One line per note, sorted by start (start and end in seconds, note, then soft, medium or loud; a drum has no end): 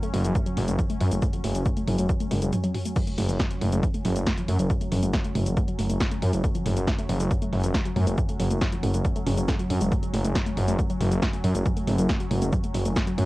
0.00 2.95 F#3 medium
0.00 0.12 A3 medium
0.00 2.95 C#4 medium
0.00 closed hi-hat medium
0.00 shaker soft
0.14 0.23 F#1 medium
0.14 0.17 A3 medium
0.14 mid tom medium
0.14 open hi-hat medium
0.24 0.33 F#1 medium
0.24 0.31 F3 medium
0.24 closed hi-hat medium
0.24 shaker medium
0.35 0.42 A3 medium
0.35 kick loud
0.35 closed hi-hat medium
0.35 mid tom medium
0.35 shaker medium
0.46 0.52 F#3 medium
0.46 closed hi-hat medium
0.46 shaker soft
0.57 0.66 F#1 loud
0.57 0.67 A3 medium
0.57 mid tom medium
0.57 open hi-hat loud
0.68 0.77 F#1 medium
0.68 0.72 A3 medium
0.68 closed hi-hat medium
0.68 shaker medium
0.79 0.85 F3 medium
0.79 kick loud
0.79 closed hi-hat medium
0.79 mid tom medium
0.79 shaker medium
0.90 0.96 A3 medium
0.90 closed hi-hat medium
0.90 shaker soft
1.00 1.10 F#2 loud
1.00 1.07 F#3 medium
1.00 mid tom medium
1.00 open hi-hat medium
1.11 1.20 F#1 medium
1.11 1.21 A3 medium
1.11 closed hi-hat medium
1.11 shaker medium
1.22 1.26 A3 medium
1.22 kick loud
1.22 closed hi-hat medium
1.22 mid tom medium
1.22 shaker medium
1.33 1.40 F3 medium
1.33 closed hi-hat medium
1.33 shaker soft
1.44 1.53 F#1 loud
1.44 1.50 A3 medium
1.44 mid tom medium
1.44 open hi-hat loud
1.55 1.64 F#1 medium
1.55 1.61 F#3 medium
1.55 closed hi-hat medium
1.55 shaker medium
1.66 1.75 A3 medium
1.66 kick loud
1.66 closed hi-hat medium
1.66 mid tom medium
1.66 shaker medium
1.77 1.80 A3 medium
1.77 closed hi-hat medium
1.77 shaker soft
1.87 1.97 F#1 medium
1.87 1.94 F3 medium
1.87 mid tom medium
1.87 open hi-hat medium
1.98 2.07 F#1 medium
1.98 2.05 A3 medium
1.98 closed hi-hat medium
1.98 shaker medium
2.09 2.16 F#3 medium
2.09 kick loud
2.09 closed hi-hat medium
2.09 mid tom medium
2.09 shaker soft
2.20 2.30 A3 medium
2.20 closed hi-hat medium
2.20 shaker soft
2.31 2.40 F#1 loud
2.31 2.35 G#3 medium
2.31 mid tom medium
2.31 open hi-hat loud
2.42 2.51 F#1 medium
2.42 2.51 G#3 medium
2.42 closed hi-hat medium
2.42 shaker medium
2.53 2.59 F#3 medium
2.53 closed hi-hat medium
2.53 mid tom medium
2.53 shaker medium
2.64 2.70 F#3 loud
2.64 closed hi-hat medium
2.64 shaker soft
2.74 2.81 F#4 medium
2.74 mid tom medium
2.74 open hi-hat medium
2.85 2.92 A3 medium
2.85 closed hi-hat medium
2.85 shaker medium
2.96 3.02 F#3 medium
2.96 13.26 F#3 medium
2.96 13.26 C#4 medium
2.96 kick loud
2.96 closed hi-hat medium
2.96 mid tom medium
2.96 crash medium
2.96 shaker medium
3.07 3.16 A3 medium
3.07 closed hi-hat medium
3.07 shaker soft
3.18 3.27 F#1 medium
3.18 3.22 A3 medium
3.18 mid tom medium
3.18 open hi-hat loud
3.29 3.38 F#1 medium
3.29 3.35 F3 medium
3.29 closed hi-hat medium
3.29 shaker medium
3.40 3.46 A3 medium
3.40 kick loud
3.40 snare loud
3.40 closed hi-hat medium
3.40 mid tom medium
3.40 shaker soft
3.51 3.57 F#3 medium
3.51 closed hi-hat medium
3.51 shaker soft
3.61 3.70 F#1 medium
3.61 3.71 A3 medium
3.61 mid tom medium
3.61 open hi-hat medium
3.72 3.81 F#1 medium
3.72 3.76 A3 medium
3.72 closed hi-hat medium
3.72 shaker medium
3.83 3.89 F3 medium
3.83 kick loud
3.83 closed hi-hat medium
3.83 mid tom medium
3.83 shaker soft
3.94 4.00 A3 medium
3.94 closed hi-hat medium
3.94 shaker soft
4.05 4.14 F#1 loud
4.05 4.11 F#3 medium
4.05 mid tom medium
4.05 open hi-hat loud
4.16 4.25 F#1 medium
4.16 4.25 A3 medium
4.16 closed hi-hat medium
4.16 shaker medium
4.27 4.30 A3 medium
4.27 kick loud
4.27 snare loud
4.27 closed hi-hat medium
4.27 mid tom medium
4.27 shaker soft
4.38 4.44 F3 medium
4.38 closed hi-hat medium
4.38 shaker soft
4.48 4.57 F#2 medium
4.48 4.55 A3 medium
4.48 mid tom medium
4.48 open hi-hat medium
4.59 4.68 F#1 medium
4.59 4.66 F#3 medium
4.59 closed hi-hat medium
4.59 shaker medium
4.70 4.80 A3 medium
4.70 kick loud
4.70 closed hi-hat medium
4.70 mid tom medium
4.70 shaker medium
4.81 4.85 A3 medium
4.81 closed hi-hat medium
4.81 shaker soft
4.92 5.01 F#1 loud
4.92 4.98 F3 medium
4.92 mid tom medium
4.92 open hi-hat loud
5.03 5.12 F#1 medium
5.03 5.09 A3 medium
5.03 closed hi-hat medium
5.03 shaker medium
5.13 5.20 F#3 medium
5.13 kick loud
5.13 snare loud
5.13 closed hi-hat medium
5.13 mid tom medium
5.13 shaker soft
5.24 5.34 A3 medium
5.24 closed hi-hat medium
5.24 shaker soft
5.35 5.44 F#1 medium
5.35 5.39 A3 medium
5.35 mid tom medium
5.35 open hi-hat medium
5.46 5.55 F#1 medium
5.46 5.52 F3 medium
5.46 closed hi-hat medium
5.46 shaker medium
5.57 5.63 A3 medium
5.57 kick loud
5.57 closed hi-hat medium
5.57 mid tom loud
5.57 shaker medium
5.68 5.74 F#3 medium
5.68 closed hi-hat medium
5.68 shaker soft
5.79 5.88 F#1 medium
5.79 5.88 A3 medium
5.79 mid tom medium
5.79 open hi-hat loud
5.90 5.99 F#1 medium
5.90 5.93 A3 medium
5.90 closed hi-hat medium
5.90 shaker medium
6.00 6.07 F3 medium
6.00 kick loud
6.00 snare loud
6.00 closed hi-hat medium
6.00 mid tom medium
6.00 shaker soft
6.11 6.18 A3 medium
6.11 closed hi-hat medium
6.11 shaker soft
6.22 6.31 F#2 medium
6.22 6.29 F#3 medium
6.22 mid tom medium
6.22 open hi-hat loud
6.33 6.42 F#1 medium
6.33 6.43 A3 medium
6.33 closed hi-hat medium
6.33 shaker medium
6.44 6.48 A3 medium
6.44 kick loud
6.44 closed hi-hat medium
6.44 mid tom medium
6.44 shaker medium
6.55 6.61 F3 medium
6.55 closed hi-hat medium
6.55 shaker soft
6.66 6.75 F#1 medium
6.66 6.72 A3 medium
6.66 mid tom loud
6.66 open hi-hat loud
6.77 6.86 F#1 medium
6.77 6.83 F#3 medium
6.77 closed hi-hat medium
6.77 shaker medium
6.87 6.97 A3 medium
6.87 kick loud
6.87 snare loud
6.87 closed hi-hat medium
6.87 mid tom medium
6.87 shaker medium
6.98 7.02 A3 medium
6.98 closed hi-hat medium
6.98 shaker soft
7.09 7.18 F#1 medium
7.09 7.16 F3 medium
7.09 mid tom medium
7.09 open hi-hat loud
7.20 7.29 F#1 medium
7.20 7.26 A3 medium
7.20 closed hi-hat medium
7.20 shaker medium
7.31 7.37 F#3 medium
7.31 kick loud
7.31 closed hi-hat medium
7.31 mid tom medium
7.31 shaker medium
7.42 7.51 A3 medium
7.42 closed hi-hat medium
7.42 shaker soft
7.53 7.62 F#1 loud
7.53 7.56 A3 medium
7.53 mid tom medium
7.53 open hi-hat loud
7.64 7.73 F#1 medium
7.64 7.70 F3 medium
7.64 closed hi-hat medium
7.64 shaker medium
7.74 7.81 A3 medium
7.74 kick loud
7.74 snare loud
7.74 closed hi-hat medium
7.74 mid tom medium
7.74 shaker medium
7.85 7.92 F#3 medium
7.85 closed hi-hat medium
7.85 shaker soft
7.96 8.05 F#2 medium
7.96 8.06 A3 medium
7.96 mid tom loud
7.96 open hi-hat loud
8.07 8.16 F#1 medium
8.07 8.11 A3 medium
8.07 closed hi-hat medium
8.07 shaker medium
8.18 8.24 F3 medium
8.18 kick loud
8.18 closed hi-hat medium
8.18 mid tom loud
8.18 shaker medium
8.29 8.35 A3 medium
8.29 closed hi-hat medium
8.29 shaker soft
8.40 8.49 F#1 loud
8.40 8.46 F#3 medium
8.40 mid tom medium
8.40 open hi-hat loud
8.50 8.59 F#1 medium
8.50 8.60 A3 medium
8.50 closed hi-hat medium
8.50 shaker medium
8.61 8.65 A3 medium
8.61 kick loud
8.61 snare loud
8.61 closed hi-hat medium
8.61 mid tom loud
8.61 shaker medium
8.72 8.79 F3 medium
8.72 closed hi-hat medium
8.72 shaker soft
8.83 8.92 F#1 medium
8.83 8.89 A3 medium
8.83 mid tom loud
8.83 open hi-hat medium
8.94 9.03 F#1 medium
8.94 9.00 F#3 medium
8.94 closed hi-hat medium
8.94 shaker medium
9.05 9.14 A3 medium
9.05 kick loud
9.05 closed hi-hat medium
9.05 mid tom medium
9.05 shaker medium
9.16 9.20 A3 medium
9.16 closed hi-hat medium
9.16 shaker soft
9.27 9.36 F#1 medium
9.27 9.36 C#4 medium
9.27 mid tom medium
9.27 open hi-hat loud
9.37 9.46 F#1 medium
9.37 9.44 F#3 loud
9.37 closed hi-hat medium
9.37 shaker medium
9.48 9.58 A3 loud
9.48 kick loud
9.48 snare loud
9.48 closed hi-hat medium
9.48 mid tom loud
9.48 shaker medium
9.59 9.63 F#3 medium
9.59 closed hi-hat medium
9.59 shaker soft
9.70 9.79 F#2 medium
9.70 9.74 D4 medium
9.70 mid tom medium
9.70 open hi-hat loud
9.81 9.90 F#1 medium
9.81 9.85 G#3 loud
9.81 closed hi-hat medium
9.81 shaker medium
9.92 9.98 A3 medium
9.92 kick loud
9.92 closed hi-hat medium
9.92 mid tom loud
9.92 shaker medium
10.03 10.09 F#3 medium
10.03 closed hi-hat medium
10.03 shaker soft
10.13 10.23 F#1 loud
10.13 10.23 A3 medium
10.13 mid tom medium
10.13 open hi-hat loud
10.24 10.33 F#1 medium
10.24 10.28 A3 medium
10.24 closed hi-hat medium
10.24 shaker medium
10.35 10.41 F#3 loud
10.35 kick loud
10.35 snare loud
10.35 closed hi-hat medium
10.35 mid tom loud
10.35 shaker medium
10.46 10.52 A3 medium
10.46 closed hi-hat medium
10.46 shaker soft
10.57 10.66 F#1 medium
10.57 10.63 F#3 medium
10.57 mid tom medium
10.57 open hi-hat medium
10.68 10.77 F#1 medium
10.68 10.77 A3 medium
10.68 closed hi-hat medium
10.68 shaker medium
10.79 10.83 A3 medium
10.79 kick loud
10.79 closed hi-hat medium
10.79 mid tom medium
10.79 shaker medium
10.90 10.96 F#3 loud
10.90 closed hi-hat medium
10.90 shaker soft
11.00 11.10 F#1 loud
11.00 11.07 A3 medium
11.00 mid tom medium
11.00 open hi-hat loud
11.11 11.20 F#1 medium
11.11 11.18 F#3 medium
11.11 closed hi-hat medium
11.11 shaker medium
11.22 11.32 A3 medium
11.22 kick loud
11.22 snare loud
11.22 closed hi-hat medium
11.22 mid tom medium
11.22 shaker medium
11.33 11.37 A3 medium
11.33 closed hi-hat medium
11.33 shaker soft
11.44 11.53 F#2 medium
11.44 11.50 F#3 loud
11.44 mid tom medium
11.44 open hi-hat medium
11.55 11.64 F#1 medium
11.55 11.61 A3 medium
11.55 closed hi-hat medium
11.55 shaker medium
11.66 11.72 F#3 medium
11.66 kick loud
11.66 closed hi-hat medium
11.66 mid tom medium
11.66 shaker medium
11.77 11.86 A3 medium
11.77 closed hi-hat medium
11.77 shaker soft
11.87 11.97 F#1 medium
11.87 11.91 A3 medium
11.87 mid tom loud
11.87 open hi-hat loud
11.98 12.07 F#1 medium
11.98 12.05 F#3 loud
11.98 closed hi-hat medium
11.98 shaker medium
12.09 12.16 A3 medium
12.09 kick loud
12.09 snare loud
12.09 closed hi-hat medium
12.09 mid tom medium
12.09 shaker medium
12.20 12.26 F#3 medium
12.20 closed hi-hat medium
12.20 shaker soft
12.31 12.40 F#1 medium
12.31 12.40 A3 medium
12.31 mid tom medium
12.31 open hi-hat medium
12.42 12.51 F#1 medium
12.42 12.46 A3 medium
12.42 closed hi-hat medium
12.42 shaker medium
12.53 12.59 F#3 loud
12.53 kick loud
12.53 closed hi-hat medium
12.53 mid tom medium
12.53 shaker medium
12.64 12.70 A3 medium
12.64 closed hi-hat medium
12.64 shaker soft
12.74 12.84 F#1 loud
12.74 12.81 F#3 medium
12.74 mid tom medium
12.74 open hi-hat loud
12.85 12.94 F#1 medium
12.85 12.95 A3 medium
12.85 closed hi-hat medium
12.85 shaker medium
12.96 13.00 A3 medium
12.96 kick loud
12.96 snare loud
12.96 closed hi-hat medium
12.96 mid tom medium
12.96 shaker medium
13.07 13.13 F#3 loud
13.07 closed hi-hat medium
13.07 shaker soft
13.18 13.26 F#2 loud
13.18 13.24 A3 medium
13.18 mid tom medium
13.18 open hi-hat medium